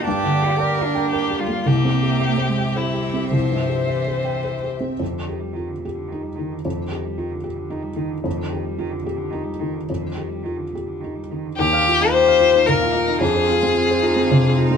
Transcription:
<<
  \new Staff \with { instrumentName = "String section" } { \time 3/4 \key ees \major \tempo 4 = 110 << { d''2. | e''2.~ | e''2. | r2. |
r2. | r2. | r2. | f''2.~ |
f''2. | } \\ { <bes g'>2. | <c' g'>2.~ | <c' g'>2. | r2. |
r2. | r2. | r2. | <bes g'>2. |
<c' f'>2. | } >> }
  \new Staff \with { instrumentName = "Violin" } { \time 3/4 \key ees \major d'4 bes'4 g'8 f'8 | g'2 e'4 | c''2~ c''8 r8 | r2. |
r2. | r2. | r2. | g'4 c''4 bes'4 |
aes'2~ aes'8 r8 | }
  \new Staff \with { instrumentName = "Felt piano" } { \time 3/4 \key ees \major \tuplet 3/2 { <g, bes>8 d8 g'8 d''8 bes'8 g''8 bes'8 g'8 bes8 } | \tuplet 3/2 { c,8 c'8 g'8 e''8 c''8 g''8 c''8 g'8 c'8 } | \tuplet 3/2 { c,8 g,8 g'8 e''8 c''8 g''8 c''8 g'8 c'8 } | f,8 g'8 f'8 g'8 ees'8 ees8 |
f,8 g'8 f'8 g'8 ees'8 ees8 | f,8 g'8 f'8 g'8 ees'8 ees8 | f,8 g'8 f'8 g'8 ees'8 ees8 | ees,16 f''16 f'16 ees'8 f''16 f'16 ees'16 bes,16 f''16 f'16 ees'16 |
f,16 c''16 f'16 c'8 c''16 f'16 c'16 c16 c''16 f'16 c'16 | }
  \new Staff \with { instrumentName = "Cello" } { \clef bass \time 3/4 \key ees \major g'4. d'4 g8 | bes4. aes8 g4 | f4 e4. r8 | bes,16 d16 ees16 g16 ees16 d16 bes,16 d16 ees16 g16 ees16 d16 |
bes,16 d16 ees16 g16 ees16 d16 bes,16 d16 ees16 g16 ees16 d16 | bes,16 d16 ees16 g16 ees16 d16 bes,16 d16 ees16 g16 ees16 d16 | bes,16 d16 ees16 g16 ees16 d16 bes,16 d16 ees16 g16 ees16 d16 | r4 g'4 f'8 ees'8 |
d'8 c'8 f'8 ees'8 d'8 ees'8 | }
>>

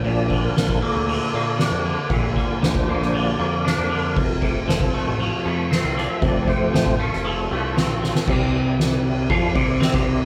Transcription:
<<
  \new Staff \with { instrumentName = "Tonewheel organ" } { \time 4/4 \key c \mixolydian \tempo 4 = 117 d''8. bes'8. a'4. g'8 r8 | a'8 bes'8 c''4 d''8. bes'8. bes'8~ | bes'4 a'8 r4. c''16 bes'16 d''16 e''16 | d''8 c''4 bes'8 a'8 g'16 f'4 r16 |
<g c' e' g'>1 | }
  \new Staff \with { instrumentName = "Tonewheel organ" } { \time 4/4 \key c \mixolydian <f bes d'>4. r2 r8 | r4 <f bes d'>4. r8 <f bes d'>8 r8 | r8 <f a c'>8 r2. | <f a c'>4. r2 r8 |
r1 | }
  \new Staff \with { instrumentName = "Clean electric guitar" } { \clef bass \time 4/4 \key c \mixolydian bes,8 d8 d8 bes8 d8 bes8 d'8 d8 | bes,8 d8 d8 bes8 d8 bes8 d'8 d8 | f,8 c8 f8 a8 f8 a8 c'8 f8 | f,8 c8 f8 a8 f8 a8 c'8 f8 |
c2 f8 c8 c'16 c8. | }
  \new Staff \with { instrumentName = "Picked electric bass" } { \clef bass \time 4/4 \key c \mixolydian bes,,4 bes,,8 r16 d,8 r16 bes,8. f,8 r16 | bes,,8 r8 d,8. bes,,8. f,8. f,8. | f,,4 f,,8 r16 a,,8 r16 f,8. c,8 r16 | f,,8 r8 a,,8. f,,8. c,8. bes,,8 r16 |
c,2 f,8 c,8 c16 c,8. | }
  \new DrumStaff \with { instrumentName = "Drums" } \drummode { \time 4/4 cymr8 <bd cymr>8 <cymr sn>16 bd16 cymr8 cymr8 cymr8 <cymr sn>8 cymr8 | <bd cymr>8 <bd cymr>8 <cymr sn>16 bd16 cymr16 sn16 cymr8 cymr8 <cymr sn>8 cymr8 | <bd cymr>8 <bd cymr>8 <cymr sn>16 bd16 cymr8 cymr8 cymr8 <cymr sn>16 sn16 <cymr sn>8 | <bd cymr>8 <bd cymr>8 <cymr sn>16 bd16 cymr16 sn16 cymr8 cymr8 <cymr sn>8 sn16 sn16 |
<cymc bd>8 cymr8 <cymr sn>8 cymr8 <bd cymr>8 <bd cymr>8 <cymr sn>16 <bd sn>16 cymr8 | }
>>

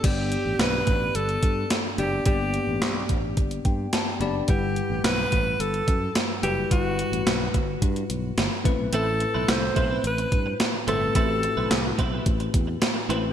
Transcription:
<<
  \new Staff \with { instrumentName = "Alto saxophone" } { \time 4/4 \key g \major \tempo 4 = 108 g'4 b'4 a'4 r8 g'8 | g'4. r2 r8 | g'4 b'4 a'4 r8 g'8 | fis'4. r2 r8 |
a'4 c''4 b'4 r8 a'8 | a'4. r2 r8 | }
  \new Staff \with { instrumentName = "Tine electric piano" } { \time 4/4 \key g \major <b d' g' d''>2 r4. <b d' g' d''>8 | <bes b d' g' d''>2 r8 g''8 a''8 <b d' g' d'' b''>8 | <g e' b' fis''>2 r4. <g e' fis' b'>8 | <g e' fis' b'>2 r4. <a c' e' b'>8~ |
<a c' e' b'>4. r2 <a c' e' b'>8 | <a c' e' fis' g'>2 r4. <a c' e' b'>8 | }
  \new Staff \with { instrumentName = "Tine electric piano" } { \clef bass \time 4/4 \key g \major g,4. r2 r8 | g,4. r2 r8 | g,4. r2 r8 | g,4. r2 a,8~ |
a,4 r2 r8 a,8~ | a,4 r2. | }
  \new Staff \with { instrumentName = "Clean electric guitar" } { \time 4/4 \key g \major r1 | r1 | r1 | r1 |
<a c' e' b'>16 r8 <a c' e' b'>16 r8 <a c' e' b'>16 <a c' e' b'>16 r4. <a c' e' b'>16 r16 | <a c' e' b'>16 r8 <a c' e' b'>16 r8 <a c' e' b'>16 <a c' e' b'>16 r4. <a c' e' b'>16 r16 | }
  \new Staff \with { instrumentName = "Fingered electric bass" } { \clef bass \time 4/4 \key g \major g,,8. a,,16 b,,8 a,,8 g,,8 g,8 r8 fis,,8 | g,,8. a,,16 b,,8 a,,8 g,,8 g,8 r8 fis,,8 | g,,8. a,,16 b,,8 a,,8 g,,8 fis,8 r8 fis,,8 | g,,8. a,,16 b,,8 g,,8 g,8 b,,8 g,,16 r16 a,,16 b,,16 |
a,,8. b,,16 c,8 b,,8 a,,8 g,8 r8 g,,8 | a,,8. b,,16 c,8 b,,8 a,,8 e,8 r8 a,,8 | }
  \new DrumStaff \with { instrumentName = "Drums" } \drummode { \time 4/4 <cymc hh bd>8 hh8 <hh sn>8 <hh bd>8 hh16 hh16 <hh bd>8 <hh sn>8 hh8 | <hh bd>8 hh8 <hh sn>8 <hh bd>8 <hh bd>16 hh16 <hh bd>8 <hh sn>8 hh8 | <hh bd>8 hh8 <hh sn>8 <hh bd>8 hh16 hh16 <hh bd>8 <hh sn>8 hh8 | <hh bd>8 hh16 hh16 <hh sn>8 <hh bd>8 <hh bd>16 hh16 hh8 <hh sn>8 <hh bd>8 |
hh8 hh8 <hh sn>8 <hh bd>8 hh16 hh16 <hh bd>8 <hh sn>8 hh8 | <hh bd>8 hh8 <hh sn>8 <hh bd>8 <hh bd>16 hh16 <hh bd>8 <hh sn>8 hh8 | }
>>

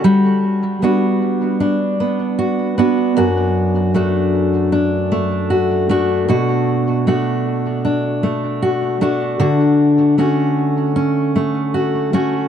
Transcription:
\new Staff \with { instrumentName = "Steel-string acoustic guitar" } { \time 4/4 \key d \major \tempo 4 = 77 <g fis'>4 <b d' fis'>4 d'8 b8 fis'8 <b d' fis'>8 | <fis, fis'>4 <a d' fis'>4 d'8 a8 fis'8 <a d' fis'>8 | <b, fis'>4 <a d' fis'>4 d'8 a8 fis'8 <a d' fis'>8 | <d fis'>4 <a cis' fis'>4 cis'8 a8 fis'8 <a cis' fis'>8 | }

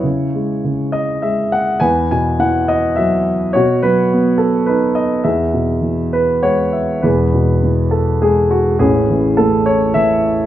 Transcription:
<<
  \new Staff \with { instrumentName = "Grand piano" } { \time 3/4 \key e \major \tempo 4 = 104 << { e'4. r4. | b'4. r4. | fis'4. r4. | gis'2 fis''8 e''8 |
gis'4. r4. | cis'4. r4. | } \\ { cis''4. dis''8 e''8 fis''8 | gis''8 gis''8 fis''8 dis''8 e''4 | cis''8 b'4 a'8 b'8 dis''8 | e''4. b'8 cis''4 |
b'4 r8 a'8 gis'8 fis'8 | gis'4 a'8 cis''8 e''4 | } >> }
  \new Staff \with { instrumentName = "Grand piano" } { \clef bass \time 3/4 \key e \major cis8 gis8 cis4 gis4 | e,8 b,8 e4 fis4 | b,8 fis8 b4 dis'4 | e,8 b,8 e4 gis4 |
<e,, e,>8 b,8 e4 gis4 | <a,, a,>8 e8 a,4 e4 | }
>>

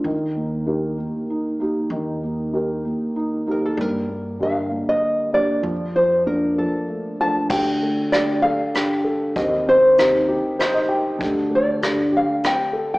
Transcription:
<<
  \new Staff \with { instrumentName = "Nylon-string guitar" } { \time 3/4 \key d \phrygian \tempo 4 = 97 r2. | r2 r8 bes'16 a'16 | bes'4 f''8. ees''8. d''8~ | d''8 c''8 bes'8 a'4 a''8 |
g''4 d''8 f''4. | ees''8 c''2 r8 | r8 d''4 f''8 g''8. g''16 | }
  \new Staff \with { instrumentName = "Grand piano" } { \time 3/4 \key d \phrygian << { r2. | r2. | r2. | r2. |
r2. | r2 c''16 ees''16 g''8 | r2. | } \\ { ees4 <ees' g' bes'>2 | ees4 <ees' g' bes'>2 | g4 <d g' bes'>2 | f4 <bes d' f'>2 |
d8 a8 g'8 a'8 g'8 a'8 | ees8 c'8 ees'8 g'8 ees'8 g'8 | d8 a8 d'8 g'4 a'8 | } >> }
  \new Staff \with { instrumentName = "Felt piano" } { \time 3/4 \key d \phrygian ees8 bes8 g'8 bes8 ees'8 <bes ees' g'>8 | ees8 bes8 g'8 bes8 ees'8 <bes ees' g'>8 | bes8 bes8 g'8 bes4 <bes d' g'>8 | f8 f8 d'8 f8 a8 <f a d'>8 |
<a g'>4 <a d' g'>4 d'4 | <c' g'>4 <c' ees' g'>4 ees'4 | <a g'>4 <a d' g'>4 c'16 r8. | }
  \new Staff \with { instrumentName = "Upright bass" } { \clef bass \time 3/4 \key d \phrygian ees,2 r4 | ees,2 r4 | g,2 r4 | f,2 r4 |
d,2 r4 | ees,2 r4 | d,2 r4 | }
  \new DrumStaff \with { instrumentName = "Drums" } \drummode { \time 3/4 r4 r4 r4 | r4 r4 r4 | r4 r4 r4 | r4 r4 r4 |
<cymc bd>4 <hh ss>4 <hh ss>4 | <hh bd>4 <hh ss>4 <hh ss>4 | <hh bd>4 <hh ss>4 <hh ss>4 | }
>>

